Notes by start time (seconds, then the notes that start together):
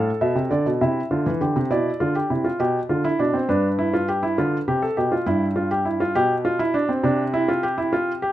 Already playing: A4
0.21 B2 E5
0.35 C3
0.51 D3 D5
0.66 B2
0.81 C3 E4 E5
1.11 D3 F4
1.26 E3
1.41 D3 G4
1.56 C3
1.70 B2 E4 D5
2.00 D3 F4
2.15 G4
2.30 C3 E4
2.44 F4
2.59 B2 G4
2.89 D3 F4
3.05 E4
3.19 B2 D4
3.34 C4
3.49 G2 D4 B4
3.79 E4
3.94 F4
4.09 G4
4.23 E4
4.38 D3 F4
4.68 C3 G4
4.82 A4
4.97 B2 G4
5.12 F4
5.26 G2 E4
5.56 F4
5.71 G4
5.85 E4
6.00 F4
6.15 B2 G4
6.45 F4
6.59 E4
6.74 D4
6.89 C4
7.03 C3 D4
7.34 E4
7.48 F4
7.63 G4
7.78 E4
7.93 F4
8.22 G4